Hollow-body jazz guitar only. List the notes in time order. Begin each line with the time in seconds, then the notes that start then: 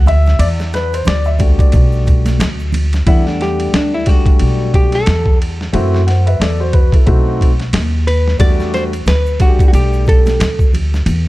3.07 E4
3.27 D4
3.42 G4
3.76 D4
3.94 E4
4.09 F#4
4.75 G4
4.95 A4
8.07 B4
8.40 D5
8.74 C5
9.08 B4
9.41 F#4
9.68 F#4
9.75 G4
10.09 A4